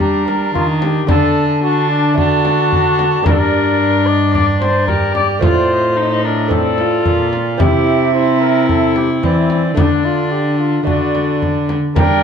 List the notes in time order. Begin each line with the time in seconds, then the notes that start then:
Already playing: G3 A#3 D4
0.00 D4 G4 A#5, frame drum
0.26 A#4, frame drum
0.55 D#3 F4, frame drum
0.82 G4, frame drum
1.07 D3 A3 D4 A4 A5, frame drum
1.63 D4 F#4 A5
1.91 D4
2.14 A3 D4 F#4, frame drum
2.18 D4 A5
2.45 frame drum
2.72 frame drum
2.99 frame drum
3.23 G2 A#3 D4 A#4, frame drum
3.27 G2 D5
3.33 A4
3.38 A#4
3.81 D5
4.06 D5 D#5
4.33 D5, frame drum
4.61 C5, frame drum
4.87 G4 A#4, frame drum
5.15 D5, frame drum
5.39 A3 C4 F4 C5, frame drum
5.43 A2 F4 D5
5.72 D#5
5.97 D#4 D#5
6.24 D4 A#4
6.48 A3 C4 F4 A4, frame drum
6.54 D5
6.78 F4, frame drum
7.05 A#2 D5, frame drum
7.33 frame drum
7.58 C3 C4 E4 G4, frame drum
7.63 E5
8.15 E4 C5
8.41 A#4
8.69 A4, frame drum
8.96 G4, frame drum
9.23 E3 C4 E4 D5, frame drum
9.50 E4, frame drum
9.75 D3 A3 D4, frame drum
10.05 F4
10.32 G4
10.59 F4
10.83 D3 A3 D4 F#4, frame drum
10.88 D5
11.15 frame drum
11.42 frame drum
11.69 frame drum
11.96 G3 A#3 D4 A#4 G5, frame drum